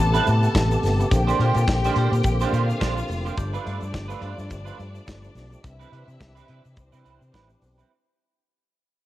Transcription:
Already playing: C3 A3 B3 G4 A4 A5
0.00 A1
0.14 G3 C4 E4 B4, closed hi-hat, shaker
0.27 A2, muted clean electric guitar stroke, closed hi-hat, shaker
0.43 muted clean electric guitar stroke, closed hi-hat, shaker
0.55 A1, muted clean electric guitar stroke, kick, snare, shaker
0.71 muted clean electric guitar stroke, closed hi-hat, shaker
0.83 G1, snare, open hi-hat, shaker
1.00 muted clean electric guitar stroke, closed hi-hat, shaker
1.10 A#1 D3 A#3 C4 G4 G5, muted clean electric guitar stroke, kick, closed hi-hat, shaker
1.27 A#3 D4 G4 C5, closed hi-hat, shaker
1.40 A#2 A#3 D4 G4 C5, closed hi-hat
1.55 A#2, muted clean electric guitar stroke, closed hi-hat, shaker
1.68 A#1, muted clean electric guitar stroke, kick, snare, shaker
1.84 A#3 D4 G4 C5, closed hi-hat, shaker
1.96 A#2 A#3 D4 G4 C5, closed hi-hat
2.12 A#2, muted clean electric guitar stroke, closed hi-hat, shaker
2.23 A#1, muted clean electric guitar stroke, kick, closed hi-hat, shaker
2.41 A#3 D4 G4 C5, closed hi-hat, shaker
2.52 A#2 A#3 D4 F4 G4 C5 F5, closed hi-hat, shaker
2.68 muted clean electric guitar stroke, closed hi-hat, shaker
2.80 A#1 A#3 D4 G4 C5, kick, snare, shaker
2.97 muted clean electric guitar stroke, closed hi-hat, shaker
3.08 F1, muted clean electric guitar stroke, open hi-hat, shaker
3.25 A#3 D4 G4 C5, closed hi-hat, shaker
3.37 G1 F3 A3 D4 G4 D5, muted clean electric guitar stroke, kick, closed hi-hat, shaker
3.53 A3 D4 F4 B4, closed hi-hat, shaker
3.65 G2 A3 D4 F4 B4, closed hi-hat
3.80 G2, muted clean electric guitar stroke, closed hi-hat, shaker
3.92 G1, muted clean electric guitar stroke, kick, snare, shaker
4.08 A3 D4 F4 B4, closed hi-hat, shaker
4.20 G2 A3 D4 F4 B4, closed hi-hat
4.36 G2, muted clean electric guitar stroke, closed hi-hat, shaker
4.48 G1, muted clean electric guitar stroke, kick, closed hi-hat, shaker
4.65 A3 D4 F4 B4, closed hi-hat, shaker
4.78 G2, muted clean electric guitar stroke, closed hi-hat, shaker
4.94 muted clean electric guitar stroke, closed hi-hat, shaker
5.06 G1, muted clean electric guitar stroke, kick, snare, shaker
5.22 muted clean electric guitar stroke, closed hi-hat, shaker
5.35 B1, snare, open hi-hat, shaker
5.50 muted clean electric guitar stroke, closed hi-hat, shaker
5.63 C2 E3 C4 E4 E5, muted clean electric guitar stroke, kick, closed hi-hat, shaker
5.79 G3 C4 E4 B4, closed hi-hat, shaker
5.92 C3 G3 C4 E4 B4, closed hi-hat
6.07 C3, muted clean electric guitar stroke, closed hi-hat, shaker
6.19 C2, muted clean electric guitar stroke, kick, snare, shaker
6.35 G3 C4 E4 B4, closed hi-hat, shaker
6.48 C3 G3 C4 E4 B4, closed hi-hat
6.64 C3, muted clean electric guitar stroke, closed hi-hat, shaker
6.76 C2 C4 C5, muted clean electric guitar stroke, kick, closed hi-hat, shaker
6.92 C3 G3 C4 E4 B4, closed hi-hat, shaker
7.04 C2 G3 C4 E4 B4, closed hi-hat, shaker
7.20 C3, muted clean electric guitar stroke, closed hi-hat, shaker
7.33 A1 G3 C4 E4 B4, kick, snare, shaker
7.49 muted clean electric guitar stroke, closed hi-hat, shaker
7.61 B1, muted clean electric guitar stroke, open hi-hat, shaker
7.78 G3 C4 E4 B4, closed hi-hat, shaker

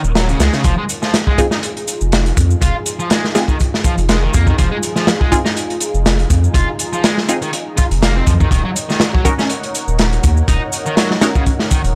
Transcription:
Already playing: D#4 A#4 C#5 F#5
0.04 D#1, shaker
0.15 F#3, snare, closed hi-hat, shaker
0.29 C#3, closed hi-hat, shaker
0.40 C#2 G#3, snare, closed hi-hat, shaker
0.53 C#3, snare, shaker
0.64 F1 F3 D#4 F4 G#4, kick, closed hi-hat, shaker
0.78 G#3
0.89 closed hi-hat, shaker
1.03 F3, snare, shaker
1.14 snare, closed hi-hat, shaker
1.27 G#3, kick
1.38 C4 D#4 F4 G#4, kick, closed hi-hat, shaker
1.51 D#4, snare, shaker
1.63 closed hi-hat, shaker
1.77 closed hi-hat
1.88 closed hi-hat, shaker
2.01 F1, shaker
2.12 snare, closed hi-hat, shaker
2.26 closed hi-hat
2.37 F2, kick, closed hi-hat, shaker
2.51 shaker
2.61 F1 F4, kick, closed hi-hat, shaker
2.86 closed hi-hat, shaker
2.99 F3, shaker
3.10 G#3, snare, closed hi-hat, shaker
3.24 snare
3.35 C4 D#4 F4 G#4, snare, closed hi-hat, shaker
3.48 D#3, kick, shaker
3.60 kick, closed hi-hat, shaker
3.74 snare
3.84 F3, kick, closed hi-hat, shaker
3.98 F1, closed hi-hat, shaker
4.09 G#3, snare, closed hi-hat, shaker
4.22 D#3
4.34 F2 A#3, kick, closed hi-hat, shaker
4.47 D#3, kick, shaker
4.58 F1 F3, kick, closed hi-hat, shaker
4.71 G#3
4.83 closed hi-hat, shaker
4.96 F3, snare, shaker
5.07 snare, closed hi-hat, shaker
5.21 G#3, kick
5.32 C4 D#4 F4 G#4, kick, closed hi-hat, shaker
5.45 D#4, snare, shaker
5.57 closed hi-hat, shaker
5.70 closed hi-hat
5.80 closed hi-hat, shaker
5.94 F1, shaker
6.06 snare, closed hi-hat, shaker
6.19 closed hi-hat
6.30 F2, kick, closed hi-hat, shaker
6.44 shaker
6.54 F1 F4, kick, closed hi-hat, shaker
6.79 closed hi-hat, shaker
6.93 F3, shaker
7.04 G#3, snare, closed hi-hat, shaker
7.18 snare
7.29 C4 D#4 F4 G#4, closed hi-hat, shaker
7.42 D#3, closed hi-hat, shaker
7.53 closed hi-hat, shaker
7.77 F4, kick, closed hi-hat, shaker
7.91 F1, closed hi-hat, shaker
8.02 A#3, snare, closed hi-hat, shaker
8.16 C4
8.27 F2 F3, kick, closed hi-hat, shaker
8.40 D#3, kick, shaker
8.51 D#1 D#3 A#4 C#5 F#5, kick, closed hi-hat, shaker
8.65 F#3
8.76 closed hi-hat, shaker
8.90 D#3, snare, shaker
9.00 snare, closed hi-hat, shaker
9.14 F#3, kick
9.25 C#4 D#4 F#4 A#4, kick, closed hi-hat, shaker
9.39 C#4, snare, shaker
9.49 closed hi-hat, shaker
9.63 closed hi-hat
9.75 closed hi-hat, shaker
9.88 D#1, shaker
9.99 snare, closed hi-hat, shaker
10.13 closed hi-hat
10.23 D#2, kick, closed hi-hat, shaker
10.37 shaker
10.48 D#1 D#4, kick, closed hi-hat, shaker
10.72 closed hi-hat, shaker
10.86 D#3, shaker
10.97 F#3, snare, closed hi-hat, shaker
11.11 snare
11.21 C#4 D#4 F#4 A#4, snare, closed hi-hat, shaker
11.35 C#3, kick, shaker
11.46 kick, closed hi-hat, shaker
11.59 snare
11.71 D#3, kick, closed hi-hat, shaker
11.84 D#1, closed hi-hat, shaker

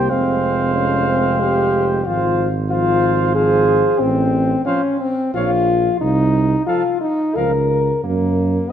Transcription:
Already playing: A#3 G4 G5
0.10 F1 G#3 C4 C5 F5
0.75 C#4
1.08 C4
1.42 G4
2.06 G#1 F3 F4 C5 F5
2.70 F3 F4 C5 F5
3.35 F3 G#4 C5 F5
4.00 A1 C4
4.65 F3 C#4 C5 F5
5.00 C4
5.34 A#1 F3 F4 C#5 F5
6.01 C2 D#4
6.66 F3 F4 A4 F5
7.01 D#4
7.36 C#2 F3 A#4 F5
8.04 F#2 A#3

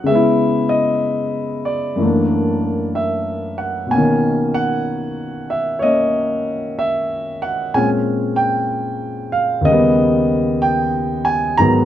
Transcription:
Already playing: D#5 F#5
0.04 C#3 G#3 E5
0.11 B3
0.15 E4
0.69 D#5
1.65 D5
1.96 F#2 E3
2.01 A3 A#3
2.07 D4
2.95 E5
3.58 F#5
3.87 B2 A#3
3.91 C#4 G#5
3.98 D#3
4.54 F#5
5.50 E5
5.79 A#3 C#5 D#5
5.85 C#4
6.79 E5
7.42 F#5
7.74 A#2 G#3 C4 C#4 G#5
8.36 G5
9.32 F5
9.61 D#2 C#3 D#5
9.68 G3 B3
10.62 G5
11.25 G#5
11.58 G#2 D#3 F#3 B3 A#5

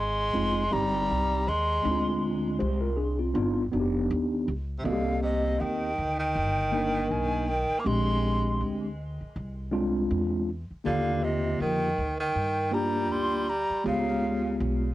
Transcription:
Already playing: G#1 G#3
0.00 C6
0.33 F1 G#3 C4 D#4 F4
0.71 G1 G3 C4 D#4 G4 A#5
1.10 C2
1.48 D#2 G#3 C6
1.83 D2 G#3 C4 D4 D#4
1.91 F4
2.59 C2 G4 C5
2.81 F4 A#4
2.97 D4 G#4
3.19 C4 F4
3.34 G1 B3 D4 D#4 F4
3.72 F1 B3 D4 D#4 F#4
3.80 G4
4.11 D#2
4.48 C#2
4.79 C3 E5
4.84 C2 D3 A#3 C4 F#4 D#5 F5
4.93 G4
5.22 C3 D#5
5.59 D#2 D#3 G5
5.98 D2
6.19 D#3 G5
6.36 G1
6.72 A#3 D4 D#4 A#4
7.10 B1 D#3 G#5
7.48 D#3 G5
7.69 muted upright bass stroke
7.79 A#3 D6
7.84 A#1 G#3 C4 D4 G4 C6
8.60 D2
9.21 muted upright bass stroke
9.36 C2
9.71 G#3 C4 D4 F4
10.11 E2
10.70 muted upright bass stroke
10.84 D#2 D3 A#3 F4 G4 F5
11.24 C3 D#5
11.60 F2 D#3 G5
11.98 D2
12.20 D#3 G5
12.35 G2
12.71 G3 A#3 D4 F4 G4 A#5
13.10 D2 G3 C6
13.48 G3 A#5
13.70 muted upright bass stroke
13.84 C#2 C#3 G#3 B3 F4 G4 F5
14.60 B1

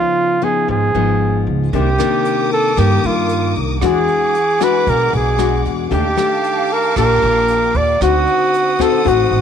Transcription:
Already playing: C#3 F3 B3 D#4 F4
0.42 F3 B3 D#4 G#4
0.68 G#1 G#2 G#4
0.95 G#1 F3 B3 D#4
1.47 C#2
1.71 C2 C3 D#3 A#3 D4 A#4 D6 D#6, kick, closed hi-hat
1.75 G4
1.98 D#3 A#3 D4, cross-stick, closed hi-hat
2.25 closed hi-hat
2.52 A4, closed hi-hat
2.76 G2 D#3 A#3 D4 G4, kick, cross-stick, closed hi-hat
3.03 G2 F4, closed hi-hat
3.29 closed hi-hat
3.56 C2, closed hi-hat
3.81 E2 E3 G#3 D4 F#4 G#4 F#5 D6, kick, cross-stick, closed hi-hat
4.08 closed hi-hat
4.35 closed hi-hat
4.60 G#3 D4 F#4 B4, cross-stick, closed hi-hat
4.86 B1 B2 A#4, kick, closed hi-hat
5.13 B1 G#4, closed hi-hat
5.38 G#3 D4 F#4, cross-stick, closed hi-hat
5.65 E2, closed hi-hat
5.90 D#2 D#3 A3 D4 G4 F5 G5 A5 D6, kick, closed hi-hat
6.17 A3 D4 G4, cross-stick, closed hi-hat
6.44 closed hi-hat
6.70 A#4, closed hi-hat
6.96 A#1 A#2 D4 G4 A#4, kick, cross-stick, closed hi-hat
7.22 A#1, closed hi-hat
7.48 closed hi-hat
7.74 D#2 D5, closed hi-hat
8.00 D2 D3 C4 D#4 F#4 C5 F#5 D#6, kick, cross-stick, closed hi-hat
8.27 closed hi-hat
8.54 closed hi-hat
8.79 C4 D#4 F#4 A4, kick, cross-stick, closed hi-hat
9.05 A1 A2 C4 D#4 F#4, kick, closed hi-hat
9.30 A1, closed hi-hat

